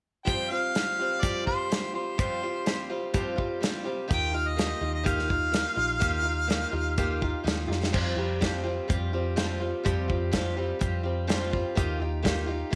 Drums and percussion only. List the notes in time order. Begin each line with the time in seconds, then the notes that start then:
0.27 kick, closed hi-hat
0.75 snare, closed hi-hat
1.23 kick, closed hi-hat
1.47 kick
1.72 snare, closed hi-hat
2.19 kick, closed hi-hat
2.66 snare, closed hi-hat
3.14 kick, closed hi-hat
3.38 kick
3.63 snare, closed hi-hat
4.11 kick, closed hi-hat
4.59 snare, closed hi-hat
5.06 kick, closed hi-hat
5.19 snare
5.30 kick
5.54 snare, closed hi-hat
6.01 kick, closed hi-hat
6.50 snare, closed hi-hat
6.98 kick, closed hi-hat
7.22 kick
7.47 snare, closed hi-hat
7.72 snare
7.83 snare
7.94 kick, crash
8.42 kick, snare, closed hi-hat
8.90 kick, closed hi-hat
9.37 snare, closed hi-hat
9.86 kick, closed hi-hat
10.10 kick
10.33 kick, snare, closed hi-hat
10.81 kick, closed hi-hat
11.29 snare, closed hi-hat
11.53 kick
11.77 kick, closed hi-hat
12.25 kick, snare, closed hi-hat